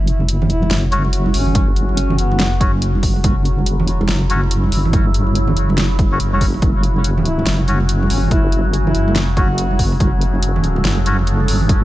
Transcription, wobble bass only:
Already playing: F#1
0.45 F1
0.71 F#1
1.34 G1
2.18 F#1
3.03 F#1
3.24 F#1
3.83 F1
4.09 F#1
4.72 G1
5.57 F#1
6.20 F#1
6.62 F#1
7.47 F#1
8.10 G1
8.95 F#1
9.79 F#1
10.00 F#1
10.85 F#1
11.48 G1

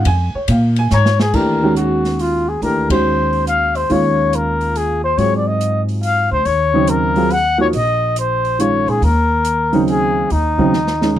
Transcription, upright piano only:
0.07 G#5
0.35 C#5
0.51 F5
0.79 G#5
0.94 A#5
1.33 E3 A3 D4 G4
1.62 D#3 G#3 C#4 F#4
2.62 E3 A3 D4 G4
2.90 D#3 G#3 C#4 F#4
3.89 D#3 G#3 C#4 F4
5.17 F#3 C4 F4 G#4
6.73 C#3 F#3 C4 D#4
7.16 F#3 C4 F4 G#4
7.58 F3 A#3 D#4 F#4
8.58 D#3 G#3 C#4 F4
9.72 C#3 F#3 C4 D#4
10.58 C#3 F#3 C4 D#4
11.01 D#3 G#3 C#4 D#4

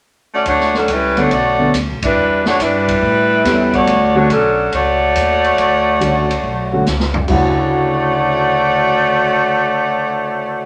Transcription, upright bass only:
0.46 D2
0.88 C#2
1.31 B1
1.74 D2
1.88 B1
2.02 A1
2.16 E2
2.59 G2
3.02 A2
3.45 E2
3.87 D2
4.30 B1
4.72 C#2
5.15 D#2
5.58 D2
6.01 C#2
6.43 B1
6.87 C#2
7.29 D2

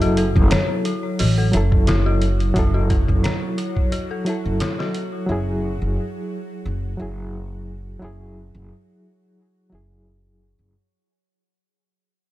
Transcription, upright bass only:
Already playing: F#1
0.36 F#1
1.20 A1
1.54 F#1
2.56 F#1
3.09 F#1
4.45 F#1
5.29 F#1
5.82 F#1
6.65 F#1
7.00 F#1
8.02 F#1
8.55 F#1
9.72 F#1
10.59 F#1

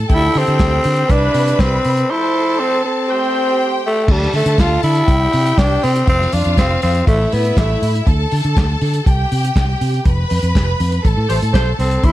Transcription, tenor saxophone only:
0.13 E4
0.38 C4
1.11 D4
1.60 C4
2.11 E4
2.60 C4
2.85 C4
3.86 A3
4.11 G3
4.35 A3
4.60 F4
4.83 E4
5.58 D4
5.84 C4
6.09 C4
6.33 D4
6.58 C4
6.83 C4
7.08 A3
7.33 B3
7.58 A3
11.79 C4
12.05 E4

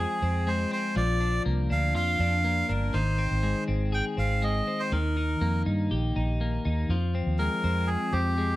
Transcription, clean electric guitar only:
Already playing: F3 G#3 C4 G#4
0.22 C4
0.47 G#3
0.71 C4
0.96 F3
1.21 D4
1.46 A#3
1.70 D4
1.95 F4
2.20 D4
2.44 A#3
2.69 D4
2.94 D#3
3.18 C4
3.43 G#3
3.68 C4
3.92 G#4
4.17 C4
4.42 G#3
4.67 C4
4.92 D#3
5.17 D#4
5.41 A#3
5.66 D#4
5.91 G4
6.16 D#4
6.41 A#3
6.65 D#4
6.90 F3
7.15 C4
7.39 G#3
7.64 C4
8.13 C4
8.38 G#3

